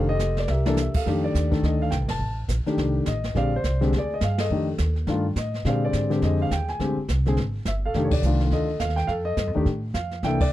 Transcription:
Already playing: F1 C5
0.09 G4 A4 D#5
0.19 snare, hi-hat pedal
0.37 D5, snare
0.48 C2 G4 A#4 E5, snare
0.66 E3 A#3 D4 A4, snare
0.77 snare, hi-hat pedal
0.81 E5
0.94 A4 F5, muted upright bass stroke, kick, crash
1.06 F2 D#3 A3 D4 G4, brush sweep, snare
1.24 D5
1.34 D#2, kick, snare, hi-hat pedal
1.51 D#3 A3 D4 A4, kick, snare
1.63 D2 A4 D#5, brush sweep, kick, snare
1.82 F5
1.91 C2 G5, kick, snare, hi-hat pedal
2.01 A1
2.08 F1 A5, snare, ride
2.19 A1, brush sweep
2.48 A#1, kick, snare, hi-hat pedal
2.66 D#3 A3 D4 G4, muted upright bass stroke, snare
2.77 C2, brush sweep, kick, snare
3.06 A1 D#5, kick, snare, hi-hat pedal
3.24 snare
3.35 A#1 D3 G#3 C4 G4 D5 F5, brush sweep, kick, snare
3.56 C5
3.64 C2, kick, snare, hi-hat pedal
3.81 D3 G#3 C4 G4, snare
3.92 D2 G#4, brush sweep, kick, snare
3.98 D5
4.14 D#5
4.21 G2 F5, kick, snare, hi-hat pedal
4.38 A4 D#5, snare, ride
4.49 F2 D#3 A3 D4 G4, brush sweep
4.78 D#2, kick, snare, hi-hat pedal
4.96 snare
5.07 G2 D#3 A3 D4 F4, brush sweep, kick, snare
5.36 A2 D#5, kick, snare, hi-hat pedal
5.54 snare
5.64 A#2 D3 G#3 C4 G4 D5 F5, brush sweep, kick, snare
5.85 D5
5.93 G#2, kick, snare, hi-hat pedal
6.10 D3 G#3 C4 G4, snare
6.22 F2 G#4 D#5, brush sweep, kick, snare
6.42 F5
6.51 D#2 G5, kick, snare, hi-hat pedal
6.68 G#5, snare
6.79 D2 D3 G#3 C4 G4, brush sweep, kick, snare
6.97 muted upright bass stroke
7.08 C2, kick, snare, hi-hat pedal
7.26 D3 G#3 C4 G#4, snare
7.37 G#1, brush sweep, kick, snare
7.65 G1 E5, kick, snare, hi-hat pedal
7.86 A4 F5
7.94 F1 D#3 A3 D4 G4, brush sweep, kick, snare
8.04 C#5
8.11 D5, kick, ride
8.22 C2 D#3 A3 D4 F4, hi-hat pedal
8.40 snare
8.51 D2 A4 D#5, brush sweep, kick, snare
8.80 D#2 F5, kick, snare, hi-hat pedal
8.89 snare
8.96 G5, snare
8.99 snare
9.07 F2 A4 F5, brush sweep, kick, snare
9.25 D#5
9.37 G2, kick, snare, hi-hat pedal
9.47 F2
9.55 D#2 D#3 A3 D4 G4
9.65 A2, brush sweep, kick, snare
9.94 F2 F5, kick, snare, hi-hat pedal
10.11 snare
10.23 C2 E3 A#3 D4 A4 E5 G5, brush sweep, kick, snare
10.40 D5, kick, ride

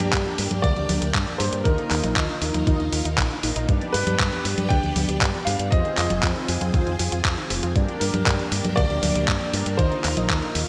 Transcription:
Already playing: A#3 D4 G4 A#4 D5
0.00 G2 G3, closed hi-hat, high conga
0.13 G2, kick, clap, closed hi-hat
0.26 F2, closed hi-hat
0.38 G2, open hi-hat
0.51 G2 G3, closed hi-hat, high conga
0.62 D2 G2 D5, kick, closed hi-hat
0.76 D2 F2, closed hi-hat
0.89 D2 G2, open hi-hat, high conga
1.02 D2 G3, closed hi-hat
1.15 G2, kick, clap, closed hi-hat
1.27 F2, closed hi-hat
1.38 G2 D4 G4 A#4 C5 D5, open hi-hat
1.53 G2 G3, closed hi-hat
1.64 D#2 D#3 D#4 F4 A#4 D#5, kick, closed hi-hat
1.78 D3, closed hi-hat
1.90 D#2 D#3 A#4, clap, open hi-hat
2.03 A#1 D#4, closed hi-hat, high conga
2.16 D#2 D#3, kick, clap, closed hi-hat
2.29 D3, closed hi-hat
2.42 D#2 D#3, open hi-hat
2.54 D#2 D#4, closed hi-hat, high conga
2.67 D#2 D#3 D#4 F4 A#4 D#5, kick, closed hi-hat
2.80 D#2 D3, closed hi-hat
2.92 D#2 D#3, open hi-hat
3.05 D#2 D#4, closed hi-hat
3.18 A#1 D#3, kick, clap, closed hi-hat
3.31 D3, closed hi-hat
3.43 A#1 D#3 D#4 F4 A#4 D#5, open hi-hat
3.56 A#1 D#4, closed hi-hat
3.68 G2 B3 D4 G4 B4 D5, kick, closed hi-hat
3.81 F2, closed hi-hat
3.93 G2 B4, open hi-hat
4.07 G2 G3, closed hi-hat, high conga
4.20 G2, kick, clap, closed hi-hat
4.32 F2, closed hi-hat
4.45 G2, open hi-hat
4.58 G2 G3, closed hi-hat, high conga
4.69 D2 G2 G5, kick, closed hi-hat
4.83 D2 F2, closed hi-hat
4.96 D2 G2, open hi-hat, high conga
5.08 D2 G3, closed hi-hat
5.21 G2, kick, clap, closed hi-hat
5.34 F2, closed hi-hat
5.45 G2 D4 G4 B4 D5 F5, open hi-hat
5.59 G2 G3, closed hi-hat
5.71 F2 F3 C4 F4 G#4 C5 D#5, kick, closed hi-hat
5.85 D#3, closed hi-hat
5.96 F2 F3 D#5, clap, open hi-hat
6.10 F1 F4, closed hi-hat, high conga
6.23 F2 F3, kick, clap, closed hi-hat
6.36 D#3, closed hi-hat
6.48 F2 F3, open hi-hat
6.61 F2 F4, closed hi-hat, high conga
6.74 D#2 F3 C4 F4 G#4 C5, kick, closed hi-hat
6.87 F2 D#3, closed hi-hat
6.99 F2 F3, open hi-hat
7.12 F2 F4, closed hi-hat
7.25 F2 F3, kick, clap, closed hi-hat
7.37 D#3, closed hi-hat
7.50 F1 F3 C4 F4 G#4 C5, open hi-hat
7.63 F2 F4, closed hi-hat
7.75 G2 A#3 D4 G4 A#4 D5, kick, closed hi-hat
7.88 F2, closed hi-hat
8.00 G2 A#4, open hi-hat
8.14 G2 G3, closed hi-hat, high conga
8.26 G2, kick, clap, closed hi-hat
8.39 F2, closed hi-hat
8.52 G2, open hi-hat
8.65 G2 G3, closed hi-hat, high conga
8.76 D2 G2 D5, kick, closed hi-hat
8.90 D2 F2, closed hi-hat
9.03 D2 G2, open hi-hat, high conga
9.15 D2 G3, closed hi-hat
9.28 G2, kick, clap, closed hi-hat
9.41 F2, closed hi-hat
9.53 G2 D4 G4 A#4 D5, open hi-hat
9.66 G2 G3, closed hi-hat
9.77 D#2 D#3 D#4 F4 A#4 C5 D#5, kick, closed hi-hat
9.92 D3, closed hi-hat
10.04 D#2 D#3, clap, open hi-hat
10.17 A#1 D#4, closed hi-hat, high conga
10.28 D#2 D#3 A#4, kick, clap, closed hi-hat
10.42 D3, closed hi-hat
10.55 D#2 D#3, open hi-hat

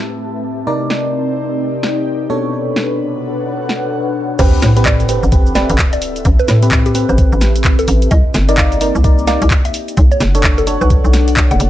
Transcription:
Already playing: A2 A3 C4 E4 G4 B4 E5 A5
0.67 C3 C4 D#4 A#4 D5
0.90 snare
1.41 D#4 G4
1.83 snare
2.30 B2 D4 F#4 A4 B4 C#5
2.65 D4
2.76 snare
3.11 F#5
3.69 snare
4.39 A1 C4 E4 G4 A4 B4 C5, kick, closed hi-hat, crash, sub drop, shaker
4.62 A2, snare, open hi-hat, shaker
4.77 C4 G4 B4, closed hi-hat, shaker
4.86 D5, kick, clap, shaker
5.00 closed hi-hat, shaker
5.09 C4 G4 B4, open hi-hat, shaker
5.15 E5
5.23 A1, shaker
5.32 C4 G4 B4, kick, closed hi-hat, shaker
5.46 shaker
5.55 C4 G4 B4 D5, snare, open hi-hat, shaker
5.70 A1, closed hi-hat, shaker
5.79 kick, clap, shaker
5.93 D5, closed hi-hat, shaker
6.02 open hi-hat, shaker
6.16 closed hi-hat, shaker
6.25 A1, kick, closed hi-hat, shaker
6.39 B4, shaker
6.48 A2, snare, open hi-hat, shaker
6.63 C4 G4 B4, closed hi-hat, shaker
6.72 kick, clap, shaker
6.86 G4, closed hi-hat, shaker
6.95 C4 G4 B4, open hi-hat, shaker
7.09 A1 C5, shaker
7.18 kick, closed hi-hat, shaker
7.32 A1, shaker
7.41 snare, open hi-hat, shaker
7.56 closed hi-hat, shaker
7.65 kick, clap, shaker
7.79 A4, closed hi-hat, shaker
7.88 A1, open hi-hat, shaker
8.02 closed hi-hat, shaker
8.11 C2 A#3 C4 D#4 D5 D#5, kick, closed hi-hat, shaker
8.34 G1, snare, open hi-hat, shaker
8.49 D#4 A#4 D5, closed hi-hat, shaker
8.58 F5, kick, clap, shaker
8.72 closed hi-hat, shaker
8.81 D#4 A#4 D5, open hi-hat, shaker
8.85 D#4 G4
8.95 C2, shaker
9.04 D#4 A#4 D5, kick, closed hi-hat, shaker
9.18 shaker
9.27 D#4 A#4 D5 F5, snare, open hi-hat, shaker
9.42 C2, closed hi-hat, shaker
9.51 kick, clap, shaker
9.65 E5, closed hi-hat, shaker
9.74 D4 F#4 A4 C#5, open hi-hat, shaker
9.88 closed hi-hat, shaker
9.96 B1 F#5, kick, closed hi-hat, shaker
10.11 C#5, shaker
10.20 F#1, snare, open hi-hat, shaker
10.35 D4 A4 C#5, closed hi-hat, shaker
10.44 kick, clap, shaker
10.58 A4, closed hi-hat, shaker
10.67 D4 A4 C#5, open hi-hat, shaker
10.81 B1 B4, shaker
10.90 kick, closed hi-hat, shaker
11.04 B1, shaker
11.13 snare, open hi-hat, shaker
11.28 closed hi-hat, shaker
11.37 kick, clap, shaker
11.51 F#1 F#5, closed hi-hat, shaker
11.60 F#1, open hi-hat, shaker

